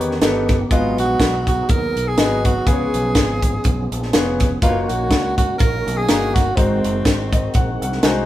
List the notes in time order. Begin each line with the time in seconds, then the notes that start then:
Already playing: D#3 G3 B3 C#4 D#4 G4 C#5
0.00 E2, closed hi-hat
0.11 snare
0.21 G1 B3 D#4 G4 A4, snare, closed hi-hat
0.49 kick, snare, closed hi-hat
0.71 G#1 G#2 F#3 G#3 B3 D#4 F4 F#4 G#4 D#5, kick, closed hi-hat
0.98 A#1 F#4, closed hi-hat
1.19 B1, kick, snare, closed hi-hat
1.47 F#4, kick, closed hi-hat
1.69 D#2 A#4, kick, closed hi-hat
1.96 B1, closed hi-hat
2.08 G#4
2.18 G#1 B3 F#4 G#4 D#5, snare, closed hi-hat
2.45 F#4, kick, closed hi-hat
2.66 C#2 C#3 F3 B3 C#4 F4 G#4 B4, kick, closed hi-hat
2.73 C#5
2.94 B1, closed hi-hat
3.15 G#1, kick, snare, closed hi-hat
3.42 kick, closed hi-hat
3.64 B1, kick, closed hi-hat
3.92 A#1, closed hi-hat
4.02 snare
4.13 F1 B3 F4 G#4 C#5, snare, closed hi-hat
4.40 kick, snare, closed hi-hat
4.62 F#1 D#3 F#3 A#3 C#4 D#4 F4 F#4 B4, kick, closed hi-hat
4.69 C#5
4.82 F4
4.89 A#1 F#4, closed hi-hat
5.10 C#2, kick, snare, closed hi-hat
5.38 F#4, kick, closed hi-hat
5.58 A#1 A#4, kick, closed hi-hat
5.87 B1, closed hi-hat
5.97 G#4
6.09 G1 A#3 D#4 F#4 A#4, snare, closed hi-hat
6.35 F#4, kick, snare, closed hi-hat
6.56 G#1 G#2 G#3 C4 D#4 F#4 C5, kick, closed hi-hat
6.84 F#1, closed hi-hat
7.05 G#1, kick, snare, closed hi-hat
7.33 D#5, kick, closed hi-hat
7.54 A#1 F#5, kick, closed hi-hat
7.81 C2 F#5, closed hi-hat
7.92 snare
8.03 C2 G#3 D#4 F#4 C5 G#5, snare, closed hi-hat